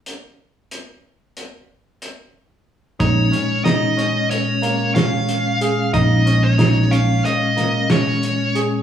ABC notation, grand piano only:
X:1
M:9/8
L:1/8
Q:3/8=61
K:Bbm
V:1 name="Grand piano"
z8 z | E D E D2 B, D2 A | E D E D2 B, D2 A |]